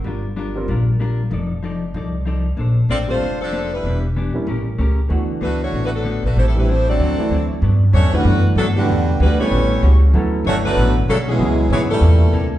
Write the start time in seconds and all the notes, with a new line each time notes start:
0.04 G1 G3 D4 F4 A#4
0.36 G3 D4 F4 A#4
0.56 G3 C4 F4 A#4
0.68 A#1 G3 D4 F4 A#4
1.00 G3 D4 F4 A#4
1.31 F1 F3 D#4 A4 D5
1.63 F3 D#4 A4 D5
1.94 C2 F3 D#4 A4 D5
2.25 F3 D#4 A4 D5
2.57 A#1 A#3 D4 A4 C5
2.89 A1 A#3 C4 D4 F4 A4 C5 D5
3.08 G3 A3 C4 D4 F4 A4 C5
3.20 F1 A#3 D4 A4 C5
3.41 F3 C4 D4 A4
3.52 A#3 D4 A4 C5
3.74 G3 D4 E4 B4
3.83 E1 E3 B3 D4
3.88 G4
4.16 E3 B3 D4 G4
4.34 G3 A#3 C#4 E4, muted upright bass stroke
4.47 A1 A3 C#4 G4 A#4
4.78 C#2 A3 C#4 G4 A#4
5.09 D2 D3 E3 A3 B3 D4 F#4
5.41 C#2 D3 A3 B3 D4 F#4 B4
5.63 A3 D4 F#4 C#5
5.72 A1 D3 A3 B3 F#4
5.85 A3 D4 F#4 B4
5.96 F#3 B3 D4 A4
6.04 D3 A3 B3 F#4
6.24 A#1 A3 D4 F#4 B4
6.36 A1 A2 G3 A3 C4 E4 G4 C5
6.48 G3 C4 E4 A4
6.55 E3 A3 D4 G4
6.60 G3 C4 E4 B4
6.67 A2 G3 A3 C4 E4 G4 C5
6.86 F#3 A3 C4 D4 F#4 A4 D5
6.99 D2 D3 F#3 C4 E4
7.18 E3 A3 D4 E4
7.30 D2 D3 F#3 C4 E4
7.61 G2 F#3 B3 D4
7.92 E2 G2 F#3 A3 B3 C#4 D4 F#4 C#5
8.12 D3 E3 G3 A3 B3 D4 F#4 B4, muted upright bass stroke
8.24 F#2 G2 F#3 B3 D4
8.55 G2 F#3 A3 B3 D4 A4
8.76 B2 D3 E3 G3 A3 B3 D4 F#4 G4
8.88 E2 E3 G3 D4 F#4
9.20 D2 D3 E3 G3 B3 D4 F#4 B4
9.39 E3 G3 B3 C#4 E4 G4 A4 C#5
9.51 A1 A2 G3 C#4 F#4
9.82 C#2 A2 G3 C#4 F#4
10.13 D2 D3 F#3 A3 B3 C#4 E4 A4
10.45 G1 D3 F#3 A3 C#4 D4 F#4 C#5
10.65 D3 F#3 A3 B3 D4 F#4 B4
10.76 A1 D3 F#3 A3 C#4
11.08 B1 C#3 D3 F#3 A3 C#4 D4 A4
11.27 B2 E3 G#3 B3 C#4 G#4
11.39 C#2 C#3 F#3 G#3 B3 E4 G#4
11.70 G#2 C#3 E3 G#3 B3 C#4 E4 G#4 C#5
11.91 A#2 E3 G3 A3 D4 E4 A4
12.01 E2 C3 A#3 E4
12.05 A4
12.32 D2 C3 A#3 E4 A4